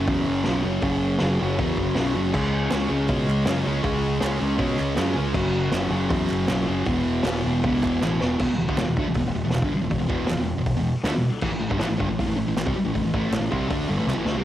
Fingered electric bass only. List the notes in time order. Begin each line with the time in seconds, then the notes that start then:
0.07 E2
0.25 F#1
0.46 B1
0.65 F#1
0.83 F#1
1.22 F#1
1.42 F#1
1.59 E2
1.78 F#1
1.96 B1
2.14 F#1
2.34 C#2
2.72 C#2
2.90 C#2
3.09 B2
3.27 C#2
3.46 F#2
3.66 C#2
3.84 C#2
4.22 C#2
4.41 C#2
4.58 B2
4.79 C#2
4.98 F#2
5.16 C#2
5.35 F#1
5.71 F#1
5.90 F#1
6.10 E2
6.30 F#1
6.49 B1
6.68 F#1
6.86 E1
7.24 E1
7.45 E1
7.64 C#2
7.83 E1
8.03 A1
8.21 E1
8.40 E1
8.50 muted fingered electric bass stroke
8.59 E1
8.69 D2
8.79 E1
8.88 E1
8.97 D2
9.08 E1
9.16 E1
9.27 E1
9.35 E1
9.45 E1
9.55 E1
9.62 G1
9.73 muted fingered electric bass stroke
9.82 E1
9.91 E1
10.00 E1
10.10 E1
10.29 E1
10.38 E1
10.57 E1
10.75 E1
11.03 D2
11.13 E1
11.21 muted fingered electric bass stroke
11.42 A1
11.51 muted fingered electric bass stroke
11.60 A1
11.71 G1
11.80 A1
11.90 A1
12.00 G1
12.09 A1
12.19 A1
12.26 A1
12.37 A1
12.47 A1
12.56 A1
12.67 C2
12.76 muted fingered electric bass stroke
12.86 A1
12.95 A1
13.05 A1
13.14 A1
13.31 A1
13.40 A1
13.52 C2
13.71 D2
13.89 G1
13.98 A1
14.07 C2
14.17 A1
14.25 D2
14.34 C2